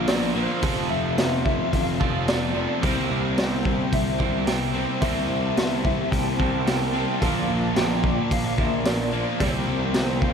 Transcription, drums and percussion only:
0.07 snare, open hi-hat
0.62 kick, open hi-hat
1.18 snare, open hi-hat
1.46 kick
1.73 kick, open hi-hat
2.01 kick
2.28 snare, open hi-hat
2.83 kick, open hi-hat
3.38 snare, open hi-hat
3.65 kick
3.93 kick, open hi-hat
4.20 kick
4.47 snare, open hi-hat
5.02 kick, open hi-hat
5.57 snare, open hi-hat
5.85 kick
6.12 kick, open hi-hat
6.40 kick
6.67 snare, open hi-hat
7.22 kick, open hi-hat
7.76 snare, open hi-hat
8.04 kick
8.31 kick, open hi-hat
8.58 kick
8.85 snare, open hi-hat
9.40 kick, open hi-hat
9.94 snare, open hi-hat
10.22 kick

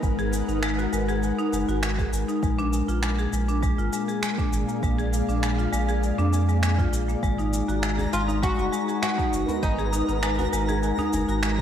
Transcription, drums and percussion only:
0.03 kick, cabasa
0.19 cabasa
0.33 cabasa
0.49 cabasa
0.63 finger snap, cabasa
0.79 cabasa
0.93 cabasa
1.09 cabasa
1.23 cabasa
1.39 cabasa
1.53 cabasa
1.69 cabasa
1.83 finger snap, cabasa
1.98 kick, cabasa
2.13 cabasa
2.29 cabasa
2.43 kick, cabasa
2.59 cabasa
2.73 cabasa
2.89 cabasa
3.03 finger snap, cabasa
3.19 cabasa
3.33 cabasa
3.49 cabasa
3.63 kick, cabasa
3.79 cabasa
3.93 cabasa
4.09 cabasa
4.23 finger snap, cabasa
4.38 kick, cabasa
4.53 cabasa
4.69 cabasa
4.83 kick, cabasa
4.99 cabasa
5.13 cabasa
5.29 cabasa
5.43 finger snap, cabasa
5.59 cabasa
5.73 cabasa
5.89 cabasa
6.03 cabasa
6.19 cabasa
6.33 cabasa
6.49 cabasa
6.63 finger snap, cabasa
6.78 kick, cabasa
6.93 cabasa
7.09 cabasa
7.23 kick, cabasa
7.39 djembe tone, cabasa
7.53 cabasa
7.69 cabasa
7.83 finger snap, cabasa
7.99 djembe bass, cabasa
8.13 cabasa
8.28 djembe tone, cabasa
8.43 kick, cabasa
8.59 cabasa
8.73 cabasa
8.89 cabasa
9.03 finger snap, cabasa
9.18 kick, cabasa
9.33 cabasa
9.48 djembe bass, cabasa
9.63 kick, cabasa
9.78 djembe tone, cabasa
9.93 cabasa
10.09 cabasa
10.23 finger snap, cabasa
10.39 djembe slap, djembe bass, cabasa
10.53 cabasa
10.68 djembe tone, cabasa
10.83 cabasa
10.98 djembe bass, cabasa
11.13 djembe tone, djembe bass, cabasa
11.29 cabasa
11.43 finger snap, cabasa
11.58 kick

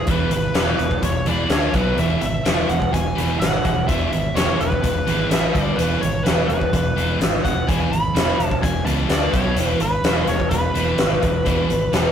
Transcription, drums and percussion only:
0.07 kick, closed hi-hat
0.31 closed hi-hat
0.55 snare, closed hi-hat
0.79 closed hi-hat
0.91 kick
1.03 kick, closed hi-hat
1.26 closed hi-hat
1.50 snare, closed hi-hat
1.74 kick, closed hi-hat
1.98 closed hi-hat
2.21 closed hi-hat
2.46 snare, closed hi-hat
2.69 closed hi-hat
2.82 kick
2.94 kick, closed hi-hat
3.18 closed hi-hat
3.42 snare, closed hi-hat
3.65 kick, closed hi-hat
3.89 kick, closed hi-hat
4.13 closed hi-hat
4.37 snare, closed hi-hat
4.61 closed hi-hat
4.72 kick
4.84 kick, closed hi-hat
5.08 closed hi-hat
5.31 snare, closed hi-hat
5.55 kick, closed hi-hat
5.79 closed hi-hat
6.03 closed hi-hat
6.26 snare, closed hi-hat
6.50 closed hi-hat
6.61 kick
6.73 kick, closed hi-hat
6.98 closed hi-hat
7.21 snare, closed hi-hat
7.45 kick, closed hi-hat
7.69 kick, closed hi-hat
7.93 closed hi-hat
8.16 snare, closed hi-hat
8.40 closed hi-hat
8.51 kick
8.63 kick, closed hi-hat
8.87 closed hi-hat
9.10 snare, closed hi-hat
9.33 kick, closed hi-hat
9.57 closed hi-hat
9.80 closed hi-hat
10.04 snare, closed hi-hat
10.27 closed hi-hat
10.40 kick
10.51 kick, closed hi-hat
10.75 closed hi-hat
10.98 snare, closed hi-hat
11.23 kick, closed hi-hat
11.46 kick, closed hi-hat
11.70 closed hi-hat
11.93 snare, closed hi-hat

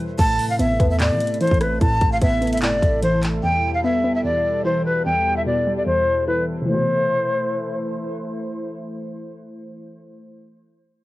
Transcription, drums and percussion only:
0.19 kick, closed hi-hat, crash
0.39 open hi-hat
0.59 closed hi-hat
0.80 kick, closed hi-hat
1.00 clap, closed hi-hat
1.20 closed hi-hat
1.27 closed hi-hat
1.34 closed hi-hat
1.41 closed hi-hat
1.47 kick, closed hi-hat
1.54 closed hi-hat
1.61 cross-stick, closed hi-hat
1.81 kick, closed hi-hat
2.01 kick, closed hi-hat
2.22 kick, closed hi-hat
2.42 closed hi-hat
2.47 closed hi-hat
2.53 closed hi-hat
2.58 closed hi-hat
2.62 clap, closed hi-hat
2.82 kick, closed hi-hat
3.03 closed hi-hat
3.23 clap, closed hi-hat

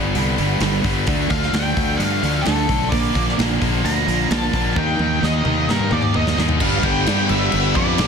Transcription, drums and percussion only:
0.15 open hi-hat
0.38 open hi-hat
0.61 snare, open hi-hat
0.84 kick, open hi-hat
1.07 kick, open hi-hat
1.30 kick, open hi-hat
1.43 snare
1.54 snare, open hi-hat
1.77 kick, open hi-hat
2.00 open hi-hat
2.24 open hi-hat
2.46 snare, open hi-hat
2.69 kick, open hi-hat
2.92 kick, open hi-hat
3.15 kick, open hi-hat
3.29 snare
3.39 snare, open hi-hat
3.62 kick, open hi-hat
3.86 open hi-hat
4.08 open hi-hat
4.31 snare, open hi-hat
4.53 kick, open hi-hat
4.76 kick
4.99 high tom
5.23 snare
5.45 mid tom
5.69 snare
5.79 mid tom
5.91 mid tom
6.02 mid tom
6.14 floor tom
6.27 snare
6.38 snare
6.49 floor tom
6.60 kick, crash
6.83 kick, crash
7.06 snare, crash
7.29 crash
7.52 crash
7.75 kick, crash
7.98 snare, crash

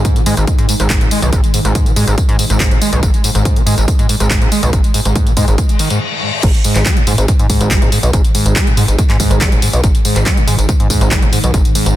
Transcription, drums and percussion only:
0.05 kick, closed hi-hat, tambourine
0.16 closed hi-hat, tambourine
0.26 open hi-hat, tambourine
0.37 closed hi-hat, tambourine
0.47 kick, closed hi-hat, tambourine
0.58 closed hi-hat, tambourine
0.69 open hi-hat, tambourine
0.80 closed hi-hat, tambourine
0.90 kick, clap, closed hi-hat, tambourine
1.01 closed hi-hat, tambourine
1.11 open hi-hat, tambourine
1.22 closed hi-hat, tambourine
1.33 kick, closed hi-hat, tambourine
1.44 closed hi-hat, tambourine
1.54 open hi-hat, tambourine
1.65 closed hi-hat, tambourine
1.75 kick, closed hi-hat, tambourine
1.86 closed hi-hat, tambourine
1.96 open hi-hat, tambourine
2.08 closed hi-hat, tambourine
2.18 kick, closed hi-hat, tambourine
2.29 closed hi-hat, tambourine
2.39 open hi-hat, tambourine
2.50 closed hi-hat, tambourine
2.60 kick, clap, closed hi-hat, tambourine
2.71 closed hi-hat, tambourine
2.82 open hi-hat, tambourine
2.93 closed hi-hat, tambourine
3.03 kick, closed hi-hat, tambourine
3.14 closed hi-hat, tambourine
3.24 open hi-hat, tambourine
3.35 closed hi-hat, tambourine
3.45 kick, closed hi-hat, tambourine
3.56 closed hi-hat, tambourine
3.67 open hi-hat, tambourine
3.78 closed hi-hat, tambourine
3.88 kick, closed hi-hat, tambourine
3.99 closed hi-hat, tambourine
4.09 open hi-hat, tambourine
4.20 closed hi-hat, tambourine
4.30 kick, clap, closed hi-hat, tambourine
4.42 closed hi-hat, tambourine
4.52 open hi-hat, tambourine
4.63 closed hi-hat, tambourine
4.73 kick, closed hi-hat, tambourine
4.84 closed hi-hat, tambourine
4.94 open hi-hat, tambourine
5.05 closed hi-hat, tambourine
5.16 kick, closed hi-hat, tambourine
5.27 closed hi-hat, tambourine
5.37 kick, open hi-hat, tambourine
5.48 closed hi-hat, tambourine
5.58 kick, closed hi-hat, tambourine
5.69 closed hi-hat, tambourine
5.79 open hi-hat, tambourine
5.90 closed hi-hat, tambourine
6.43 kick, closed hi-hat, tambourine, crash
6.54 closed hi-hat, tambourine
6.64 open hi-hat, tambourine
6.76 clap, closed hi-hat, tambourine
6.86 kick, clap, closed hi-hat, tambourine
6.97 closed hi-hat, tambourine
7.07 open hi-hat, tambourine
7.18 closed hi-hat, tambourine
7.28 kick, closed hi-hat, tambourine
7.39 closed hi-hat, tambourine
7.50 kick, open hi-hat, tambourine
7.61 closed hi-hat, tambourine
7.71 kick, clap, closed hi-hat, tambourine
7.82 closed hi-hat, tambourine
7.92 open hi-hat, tambourine
8.03 closed hi-hat, tambourine
8.13 kick, closed hi-hat, tambourine
8.24 closed hi-hat, tambourine
8.35 open hi-hat, tambourine
8.46 closed hi-hat, tambourine
8.56 kick, clap, closed hi-hat, tambourine
8.67 closed hi-hat, tambourine
8.77 open hi-hat, tambourine
8.88 closed hi-hat, tambourine
8.98 kick, closed hi-hat, tambourine
9.10 clap, closed hi-hat, tambourine
9.20 kick, open hi-hat, tambourine
9.31 closed hi-hat, tambourine
9.41 kick, clap, closed hi-hat, tambourine
9.52 closed hi-hat, tambourine
9.62 open hi-hat, tambourine
9.73 closed hi-hat, tambourine
9.84 kick, closed hi-hat, tambourine
9.95 closed hi-hat, tambourine
10.05 open hi-hat, tambourine
10.16 clap, closed hi-hat, tambourine
10.26 kick, clap, closed hi-hat, tambourine
10.37 closed hi-hat, tambourine
10.48 open hi-hat, tambourine
10.59 closed hi-hat, tambourine
10.69 kick, closed hi-hat, tambourine
10.80 closed hi-hat, tambourine
10.90 kick, open hi-hat, tambourine
11.01 closed hi-hat, tambourine
11.11 kick, clap, closed hi-hat, tambourine
11.22 closed hi-hat, tambourine
11.33 open hi-hat, tambourine
11.44 closed hi-hat, tambourine
11.54 kick, closed hi-hat, tambourine
11.65 closed hi-hat, tambourine
11.75 open hi-hat, tambourine
11.86 closed hi-hat, tambourine

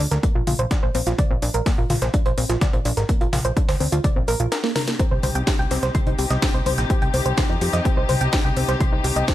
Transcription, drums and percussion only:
0.00 closed hi-hat
0.11 snare, closed hi-hat
0.23 kick, closed hi-hat
0.47 closed hi-hat, open hi-hat, mid tom
0.59 closed hi-hat
0.71 kick, snare, closed hi-hat
0.95 closed hi-hat, open hi-hat
1.07 snare, closed hi-hat
1.19 kick, closed hi-hat, mid tom
1.42 closed hi-hat, open hi-hat
1.54 closed hi-hat
1.66 kick, snare, closed hi-hat, open hi-hat
1.90 snare, closed hi-hat, open hi-hat, mid tom
2.02 snare, closed hi-hat
2.14 kick, closed hi-hat
2.26 closed hi-hat
2.38 closed hi-hat, open hi-hat
2.50 snare, closed hi-hat
2.61 kick, snare, closed hi-hat, mid tom
2.73 closed hi-hat
2.85 closed hi-hat, open hi-hat
2.97 snare, closed hi-hat
3.09 kick, closed hi-hat
3.21 closed hi-hat
3.33 snare, closed hi-hat, open hi-hat, mid tom
3.45 closed hi-hat
3.57 kick, closed hi-hat
3.69 snare, closed hi-hat, open hi-hat
3.80 open hi-hat
3.92 closed hi-hat
4.04 kick, closed hi-hat, mid tom
4.28 closed hi-hat, open hi-hat
4.40 closed hi-hat
4.52 snare, closed hi-hat
4.64 snare
4.76 snare, closed hi-hat, open hi-hat, mid tom
4.88 snare, closed hi-hat
4.99 kick, closed hi-hat
5.23 closed hi-hat, open hi-hat, mid tom
5.35 closed hi-hat
5.47 kick, snare, closed hi-hat, open hi-hat
5.71 snare, closed hi-hat, open hi-hat
5.83 snare, closed hi-hat
5.95 kick, closed hi-hat, mid tom
6.07 closed hi-hat
6.19 closed hi-hat, open hi-hat
6.30 snare, closed hi-hat
6.42 kick, snare, closed hi-hat
6.54 closed hi-hat
6.66 closed hi-hat, open hi-hat, mid tom
6.78 snare, closed hi-hat
6.90 kick, closed hi-hat
7.02 closed hi-hat
7.14 closed hi-hat, open hi-hat
7.26 closed hi-hat
7.38 kick, snare, closed hi-hat, mid tom
7.61 closed hi-hat, open hi-hat
7.73 snare, closed hi-hat
7.85 kick, closed hi-hat
8.09 closed hi-hat, open hi-hat, mid tom
8.21 closed hi-hat
8.33 kick, snare, closed hi-hat
8.57 closed hi-hat, open hi-hat
8.69 snare, closed hi-hat
8.80 kick, closed hi-hat, mid tom
9.04 closed hi-hat, open hi-hat
9.16 closed hi-hat
9.28 kick, snare, closed hi-hat, open hi-hat

